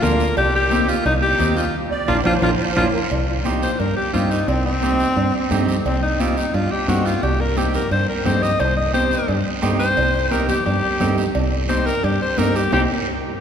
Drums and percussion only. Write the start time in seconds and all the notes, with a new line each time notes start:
0.03 high conga, low conga, low timbale, short guiro
0.20 short guiro
0.37 cowbell, high conga, long guiro
0.71 high conga, short guiro
0.88 short guiro
1.05 cowbell, high conga, long guiro
1.40 high conga, short guiro
1.57 short guiro
2.08 low conga, high timbale, long guiro
2.25 low conga, high timbale, long guiro
2.42 low conga, high timbale, long guiro
2.76 low conga, high timbale, long guiro
3.11 cowbell, long guiro
3.45 high conga, short guiro
3.62 high conga, short guiro
3.80 cowbell, long guiro
4.14 high conga, short guiro
4.31 short guiro
4.48 cowbell, long guiro
4.82 high conga, short guiro
4.99 high conga, short guiro
5.17 cowbell, long guiro
5.51 high conga, low conga, low timbale, short guiro
5.68 short guiro
5.86 cowbell, long guiro
6.20 high conga, short guiro
6.37 short guiro
6.54 cowbell, long guiro
6.88 high conga, low timbale, short guiro
7.06 short guiro
7.23 cowbell, long guiro
7.57 high conga, short guiro
7.74 low conga, short guiro
7.92 cowbell, long guiro
8.25 high conga, low conga, low timbale, short guiro
8.43 short guiro
8.60 cowbell, long guiro
8.94 high conga, short guiro
9.11 high conga, short guiro
9.28 cowbell, long guiro
9.63 high conga, low timbale, short guiro
9.80 short guiro
9.97 cowbell, long guiro
10.31 high conga, short guiro
10.49 high conga, low conga, short guiro
10.66 cowbell, long guiro
11.00 high conga, low conga, low timbale, short guiro
11.18 short guiro
11.35 cowbell, long guiro
11.69 high conga, short guiro
11.87 short guiro
12.04 cowbell, long guiro
12.38 high conga, low timbale, short guiro
12.56 short guiro
12.72 high conga, high timbale, long guiro